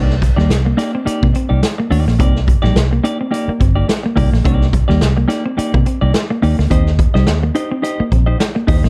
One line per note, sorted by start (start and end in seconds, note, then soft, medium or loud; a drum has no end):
0.00 0.29 C2 medium
0.00 0.15 A#3 medium
0.00 0.15 D#4 loud
0.00 0.15 G4 medium
0.00 0.15 D5 loud
0.10 snare soft
0.22 muted clean electric guitar stroke soft
0.22 kick medium
0.22 closed hi-hat medium
0.36 0.47 D#2 medium
0.36 0.48 G3 medium
0.36 0.50 A#3 soft
0.36 0.50 D#4 medium
0.36 0.50 G4 medium
0.36 0.50 D5 medium
0.36 snare soft
0.49 0.72 C2 medium
0.49 snare loud
0.49 closed hi-hat medium
0.65 0.76 A#3 medium
0.65 muted clean electric guitar stroke soft
0.77 0.97 A#3 medium
0.77 0.92 D#4 medium
0.77 0.92 G4 medium
0.77 0.92 D5 medium
0.77 muted clean electric guitar stroke soft
0.77 snare soft
0.77 closed hi-hat medium
0.93 1.04 C4 medium
0.93 muted clean electric guitar stroke soft
1.05 1.25 A#3 medium
1.05 1.26 D#4 medium
1.05 1.26 G4 medium
1.05 1.26 D5 medium
1.05 muted fingered electric bass stroke soft
1.05 muted clean electric guitar stroke soft
1.05 closed hi-hat medium
1.23 1.33 C3 medium
1.23 1.32 A#3 medium
1.23 kick medium
1.33 1.47 C4 medium
1.33 muted clean electric guitar stroke soft
1.33 closed hi-hat medium
1.49 1.61 C2 medium
1.49 1.61 A#3 soft
1.49 1.61 D#4 medium
1.49 1.62 G4 medium
1.49 1.62 D5 medium
1.62 muted clean electric guitar stroke medium
1.62 snare loud
1.62 closed hi-hat loud
1.78 1.89 A#3 medium
1.78 muted clean electric guitar stroke soft
1.90 2.04 D#2 medium
1.90 2.12 A#3 medium
1.90 2.06 D#4 medium
1.90 2.06 G4 medium
1.90 2.05 D5 medium
1.90 muted clean electric guitar stroke soft
1.90 open hi-hat medium
2.06 2.20 A#1 medium
2.06 2.17 A#3 medium
2.06 muted clean electric guitar stroke soft
2.06 snare soft
2.19 2.55 C2 loud
2.19 2.38 A#3 loud
2.19 2.32 C4 medium
2.19 2.39 D#4 medium
2.19 2.39 G4 medium
2.19 2.39 D5 loud
2.19 kick loud
2.19 closed hi-hat medium
2.36 snare soft
2.47 muted clean electric guitar stroke soft
2.47 kick medium
2.47 closed hi-hat medium
2.62 2.73 A#1 medium
2.62 2.73 G3 medium
2.62 2.76 A#3 soft
2.62 2.76 D#4 medium
2.62 2.76 G4 medium
2.62 2.75 D5 medium
2.62 snare soft
2.75 2.98 C2 medium
2.75 snare loud
2.75 closed hi-hat medium
2.91 3.02 A#3 medium
2.91 muted clean electric guitar stroke soft
3.04 3.23 A#3 medium
3.04 3.19 D#4 medium
3.04 3.19 G4 medium
3.04 3.18 D5 loud
3.04 muted clean electric guitar stroke soft
3.04 closed hi-hat loud
3.19 3.30 C4 medium
3.19 muted clean electric guitar stroke soft
3.31 3.51 A#3 medium
3.31 3.51 D#4 medium
3.31 3.51 G4 medium
3.31 3.51 D5 medium
3.31 muted clean electric guitar stroke soft
3.31 closed hi-hat loud
3.48 3.58 A#3 medium
3.48 muted fingered electric bass stroke soft
3.60 3.83 G1 loud
3.60 3.73 C4 medium
3.60 muted clean electric guitar stroke soft
3.60 kick medium
3.60 closed hi-hat medium
3.75 3.87 A#3 soft
3.75 3.87 D#4 soft
3.75 3.87 G4 soft
3.75 3.87 D5 medium
3.88 muted clean electric guitar stroke soft
3.88 snare loud
3.88 closed hi-hat loud
4.03 4.15 A#3 medium
4.03 muted clean electric guitar stroke soft
4.16 4.30 C2 medium
4.16 4.36 A#3 medium
4.16 4.31 D#4 medium
4.16 4.31 G4 medium
4.16 4.30 D5 medium
4.16 muted clean electric guitar stroke soft
4.16 kick medium
4.16 open hi-hat medium
4.32 4.43 A#1 medium
4.32 4.43 A#3 medium
4.32 muted clean electric guitar stroke soft
4.32 snare soft
4.44 4.80 C2 loud
4.44 4.66 A#3 medium
4.44 4.58 C4 medium
4.44 4.66 D#4 medium
4.44 4.67 G4 medium
4.44 4.67 D5 loud
4.44 kick loud
4.44 closed hi-hat medium
4.61 snare soft
4.72 muted clean electric guitar stroke soft
4.72 kick loud
4.72 closed hi-hat medium
4.88 4.99 D#2 loud
4.88 4.99 G3 medium
4.88 5.02 A#3 medium
4.88 5.02 D#4 medium
4.88 5.01 G4 medium
4.88 5.01 D5 medium
4.88 snare soft
5.01 5.24 C2 medium
5.01 snare loud
5.01 closed hi-hat medium
5.17 5.27 A#3 medium
5.17 muted clean electric guitar stroke medium
5.28 5.48 A#3 medium
5.28 5.44 D#4 medium
5.28 5.44 G4 medium
5.28 5.44 D5 loud
5.28 muted clean electric guitar stroke soft
5.28 snare soft
5.28 closed hi-hat medium
5.45 5.55 C4 medium
5.45 muted clean electric guitar stroke soft
5.57 5.77 A#3 medium
5.57 5.77 D#4 medium
5.57 5.77 G4 medium
5.57 5.77 D5 medium
5.57 muted fingered electric bass stroke soft
5.57 muted clean electric guitar stroke soft
5.57 closed hi-hat medium
5.74 5.84 C3 medium
5.74 5.83 A#3 medium
5.74 kick medium
5.85 5.98 C4 medium
5.85 muted clean electric guitar stroke soft
5.85 closed hi-hat medium
6.01 6.12 C2 medium
6.01 6.13 A#3 soft
6.01 6.13 D#4 medium
6.01 6.13 G4 soft
6.01 6.13 D5 medium
6.14 muted clean electric guitar stroke soft
6.14 snare loud
6.14 closed hi-hat medium
6.30 6.40 A#3 medium
6.30 muted clean electric guitar stroke soft
6.42 6.56 D#2 medium
6.42 6.62 A#3 medium
6.42 6.57 D#4 medium
6.42 6.57 G4 medium
6.42 6.57 D5 medium
6.42 muted clean electric guitar stroke soft
6.42 open hi-hat medium
6.58 6.69 D2 medium
6.58 6.68 A#3 medium
6.58 muted clean electric guitar stroke soft
6.58 snare soft
6.70 7.06 D#2 loud
6.70 6.83 C4 medium
6.70 6.90 D#4 medium
6.70 6.90 G4 medium
6.70 6.90 C5 loud
6.70 6.90 D#5 loud
6.70 kick medium
6.70 closed hi-hat medium
6.86 snare soft
6.99 muted clean electric guitar stroke soft
6.99 kick medium
6.99 closed hi-hat medium
7.14 7.25 C2 medium
7.14 7.24 G3 medium
7.14 7.27 D#4 soft
7.14 7.27 G4 medium
7.14 7.27 C5 medium
7.14 7.27 D#5 medium
7.14 snare soft
7.27 7.50 D#2 medium
7.27 snare loud
7.27 closed hi-hat medium
7.43 7.53 A#3 medium
7.43 muted clean electric guitar stroke soft
7.55 7.74 D#4 medium
7.55 7.70 G4 medium
7.55 7.70 C5 medium
7.55 7.70 D#5 medium
7.55 muted clean electric guitar stroke soft
7.55 closed hi-hat medium
7.71 7.81 C4 medium
7.71 muted clean electric guitar stroke soft
7.82 8.02 D#4 medium
7.82 8.03 G4 medium
7.82 8.03 C5 medium
7.82 8.03 D#5 medium
7.82 muted clean electric guitar stroke soft
7.82 closed hi-hat medium
8.00 8.09 A#3 medium
8.00 muted fingered electric bass stroke soft
8.11 8.34 A#1 medium
8.11 8.24 C4 medium
8.11 muted clean electric guitar stroke soft
8.11 kick medium
8.11 closed hi-hat medium
8.26 8.38 D#4 soft
8.26 8.38 G4 medium
8.26 8.38 C5 medium
8.26 8.38 D#5 medium
8.40 snare loud
8.40 closed hi-hat loud
8.55 8.65 A#3 medium
8.55 muted clean electric guitar stroke soft
8.67 8.81 D#2 medium
8.67 8.87 D#4 medium
8.67 8.83 G4 medium
8.67 8.83 C5 medium
8.67 8.82 D#5 loud
8.67 kick loud
8.67 open hi-hat medium
8.83 8.89 A#1 medium
8.83 8.89 A#3 medium
8.83 muted clean electric guitar stroke soft
8.83 snare soft